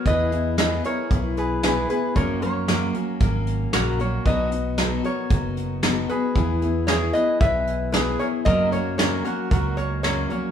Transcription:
<<
  \new Staff \with { instrumentName = "Resonator guitar played with a steel bar" } { \time 4/4 \key e \lydian \tempo 4 = 114 <b' dis''>4 <b' dis''>8 <ais' cis''>4 <gis' b'>8 <gis' b'>8 <gis' b'>8 | <ais' cis''>8 <ais' cis''>2~ <ais' cis''>8 <fis' ais'>8 <ais' cis''>8 | <b' dis''>4. <ais' cis''>4. r8 <gis' b'>8~ | <gis' b'>4 <gis' cis''>8 <b' dis''>8 <b' e''>4 <gis' b'>8 <ais' cis''>8 |
<ais' dis''>8 <ais' cis''>8 <ais' cis''>8 <fis' ais'>8 <fis' ais'>8 <ais' cis''>8 <ais' cis''>8 <ais' cis''>8 | }
  \new Staff \with { instrumentName = "Steel-string acoustic guitar" } { \time 4/4 \key e \lydian <e b e' gis'>8 <b e' gis'>8 <e b e' gis'>8 <b e' gis'>8 <e b e' gis'>4 <e b e' gis'>8 <b e' gis'>8 | <fis, cis fis ais cis' fis'>8 <fis ais cis' fis'>8 <fis, cis fis ais cis' fis'>8 <fis ais cis' fis'>8 <fis ais cis' fis'>4 <fis, cis fis ais cis' fis'>8 <fis ais cis' fis'>8 | <b, fis b dis' fis'>8 <b dis' fis'>8 <b, fis b dis' fis'>8 <b dis' fis'>8 <fis b dis' fis'>4 <b, fis b dis' fis'>8 <b dis' fis'>8 | <e b e' gis'>8 <b e' gis'>8 <e b e' gis'>8 <b e' gis'>8 <e b e' gis'>4 <e b e' gis'>8 <b e' gis'>8 |
<fis, cis fis ais cis' fis'>8 <fis ais cis' fis'>8 <fis, cis fis ais cis' fis'>8 <fis ais cis' fis'>8 <fis ais cis' fis'>4 <fis, cis fis ais cis' fis'>8 <fis ais cis' fis'>8 | }
  \new Staff \with { instrumentName = "Fretless electric bass" } { \clef bass \time 4/4 \key e \lydian e,2 b,,2 | fis,2 gis,,4 ais,,4 | b,,2 fis,,2 | e,2 b,,2 |
fis,2 cis,2 | }
  \new DrumStaff \with { instrumentName = "Drums" } \drummode { \time 4/4 <hh bd>8 hh8 <hh sn>8 hh8 <hh bd>8 hh8 <hh sn>8 hh8 | <hh bd>8 hh8 <hh sn>8 hh8 <hh bd>8 hh8 <hh sn>8 hh8 | <hh bd>8 hh8 <hh sn>8 hh8 <hh bd>8 hh8 <hh sn>8 hh8 | <hh bd>8 hh8 <hh sn>8 hh8 <hh bd>8 hh8 <hh sn>8 hh8 |
<hh bd>8 hh8 <hh sn>8 hh8 <hh bd>8 hh8 <hh sn>8 hh8 | }
>>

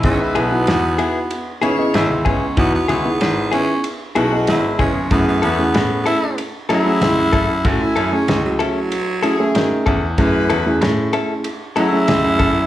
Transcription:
<<
  \new Staff \with { instrumentName = "Horn section" } { \time 4/4 \key fis \dorian \tempo 4 = 95 <e cis' b'>4 r4. <cis' cis''>8. r8. | <e cis' cis''>4 r4. <cis' fis'>8. r8. | <a e' fis'>4 r4. <e' fis' gis'>8. r8. | <e' fis' gis''>4 r4. <e' fis' gis'>8. r8. |
<e' fis' b'>4 r4. <e' fis'>8. r8. | }
  \new Staff \with { instrumentName = "Clean electric guitar" } { \time 4/4 \key fis \dorian r8 <b e' gis'>8 r8 <b e' gis'>8 r8 <b e' gis'>8 r8 <b e' gis'>8 | r8 <b e' gis'>8 r8 <b e' gis'>8 r8 <b e' gis'>8 r8 <b e' gis'>8 | r8 <cis' e' a'>8 r8 <cis' e' a'>8 r8 <cis' e' a'>8 r8 <cis' e' a'>8 | r8 <cis' e' a'>8 r8 <cis' e' a'>8 r8 <cis' e' a'>8 r8 <cis' e' a'>8 |
r8 <cis' e' a'>8 r8 <cis' e' a'>8 r8 <cis' e' a'>8 r8 <cis' e' a'>8 | }
  \new Staff \with { instrumentName = "Reed electric piano" } { \time 4/4 \key fis \dorian <b dis' e' gis'>8 r16 <b dis' e' fis'>4~ <b dis' e' fis'>16 r8 <b dis' e' gis'>16 <b e' gis' dis''>4 r16 | <b dis' e' fis'>8 r16 <b dis' e' gis'>4~ <b dis' e' gis'>16 r8 <b dis' e' gis'>16 <b e' gis' dis''>4 r16 | <a cis' e' gis'>8 r16 <a cis' e' gis'>4~ <a cis' e' gis'>16 r8 <a cis' e' gis'>16 <a cis' e' gis'>4 r16 | <a cis' e' a'>8 r16 <a cis' e' gis'>4~ <a cis' e' gis'>16 r8 <a cis' e' gis'>16 <a cis' gis' e''>4 r16 |
<a cis' e' gis'>8 r16 <a cis' e' gis'>4~ <a cis' e' gis'>16 r8 <a cis' e' gis'>16 <a cis' e' gis'>4 r16 | }
  \new Staff \with { instrumentName = "Tenor saxophone" } { \time 4/4 \key fis \dorian cis'16 e'16 b2 r8 e'8 cis'8 | b16 b16 b4 cis'8 r4 e'8 cis'8 | b16 b16 b4 e'8 r8 e'4. | fis'16 e'8 cis'8 fis16 fis2 r8 |
r2 r8 e'4. | }
  \new Staff \with { instrumentName = "Grand piano" } { \clef bass \time 4/4 \key fis \dorian cis,8 b,,8 e,8 r4 cis8 gis,,16 cis,8. | e,16 r16 cis,16 r16 gis,,8 r4 b,,8 gis,,8 fis,,8 | fis,8 e,8 a,8 r4 fis8 cis,16 fis,8. | a,16 r16 fis,16 r16 cis,8 r4. dis8 e,8 |
fis,8 e,8 a,8 r4 fis8 cis,16 fis,8. | }
  \new DrumStaff \with { instrumentName = "Drums" } \drummode { \time 4/4 <bd cymr>8 cymr8 <cymr sn>8 cymr8 cymr8 cymr8 <cymr sn>8 <bd cymr>8 | <bd cymr>8 cymr8 <cymr sn>8 cymr8 cymr8 cymr8 <cymr sn>8 <bd cymr>8 | <bd cymr>8 cymr8 <cymr sn>8 cymr8 cymr8 cymr8 <cymr sn>8 <bd cymr>8 | <bd cymr>8 cymr8 <cymr sn>8 cymr8 cymr8 cymr8 <cymr sn>8 <bd cymr>8 |
<bd cymr>8 cymr8 <cymr sn>8 cymr8 cymr8 cymr8 <cymr sn>8 <bd cymr>8 | }
>>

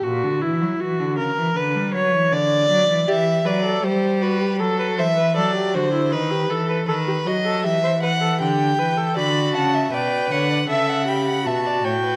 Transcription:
<<
  \new Staff \with { instrumentName = "Violin" } { \time 4/4 \key e \minor \tempo 4 = 79 r1 | r1 | r1 | b''8 a''8 g''8 fis''8 e''8 b''8 a''8 g''8 | }
  \new Staff \with { instrumentName = "Violin" } { \time 4/4 \key e \minor r1 | e''8 d''8 c''8 b'8 a'8 e''8 d''8 c''8 | b'8 a'8 b'8 dis''8 e''8 fis''8 g''4 | d''8 fis''16 e''16 d''8 cis''16 d''16 e''16 fis''16 g''16 fis''16 e''16 d''16 cis''16 b'16 | }
  \new Staff \with { instrumentName = "Viola" } { \time 4/4 \key e \minor fis'8 e'8 fis'8 ais'8 b'8 cis''8 d''4 | g'8 b'16 a'16 g'8 fis'16 g'16 a'16 b'16 c''16 b'16 a'16 g'16 fis'16 e'16 | dis'16 g'16 a'16 b'16 a'16 g'16 fis'16 a'16 g'16 c''16 b'16 a'16 g'8 b'16 a'16 | fis'4 b'4 a'8 g'8 fis'4 | }
  \new Staff \with { instrumentName = "Cello" } { \clef bass \time 4/4 \key e \minor ais,16 d16 e16 fis16 e16 d16 cis16 e16 d16 g16 fis16 e16 d8 fis16 e16 | e8 fis8 g4 fis8 e8 fis8 d8 | dis8 e8 dis8 fis8 e4 d8 e8 | d8 cis8 b,8 d8 cis4 b,8 a,8 | }
>>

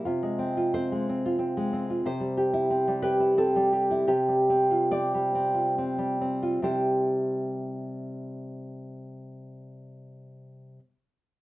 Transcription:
\new Staff \with { instrumentName = "Nylon-string guitar" } { \time 3/4 \key c \major \tempo 4 = 76 << { f'4 c''2 | c''4. b'8 a'4 | g'4 d''2 | <c g e' g' c''>2.~ |
<c g e' g' c''>2. | } \\ { c16 aes16 c'16 f'16 c'16 aes16 c'16 f'16 c'16 aes16 c'16 f'16 | c16 g16 g'16 e'16 c'16 g16 g'16 e'16 c'16 g16 g'16 e'16 | c16 g16 c'16 f'16 c'16 g16 c'16 f'16 c'16 g16 c'16 f'16 | r2. |
r2. | } >> }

